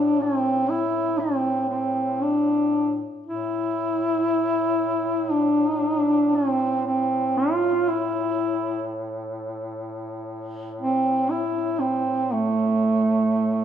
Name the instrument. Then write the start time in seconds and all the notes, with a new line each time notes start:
duduk
Already playing: A2 D4
0.22 C4
0.69 E4
1.20 C4
1.69 C4
2.22 D4
3.26 A2 E4
5.31 D4
6.34 C4
6.87 C4
7.38 F4
7.89 E4
10.82 C4
11.31 E4
11.79 C4
12.33 A3